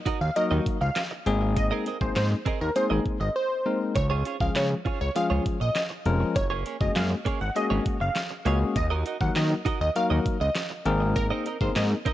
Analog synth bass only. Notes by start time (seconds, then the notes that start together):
0.21 D#2
0.51 D#2
0.81 C#2
1.26 G#1
2.01 G#1
2.16 G#2
2.61 D#2
2.91 G#1
3.21 G#1
3.96 C#2
4.41 C#2
4.56 C#3
5.01 C#2
5.31 C#2
5.61 A#1
6.06 F1
6.36 F#1
6.81 F#1
6.96 F#2
7.41 G#1
7.71 G#1
8.01 F#1
8.46 C#2
8.76 D#2
9.21 D#2
9.36 D#3
9.81 D#2
10.11 D#2
10.41 C#2
10.86 G#1
11.61 G#1
11.76 G#2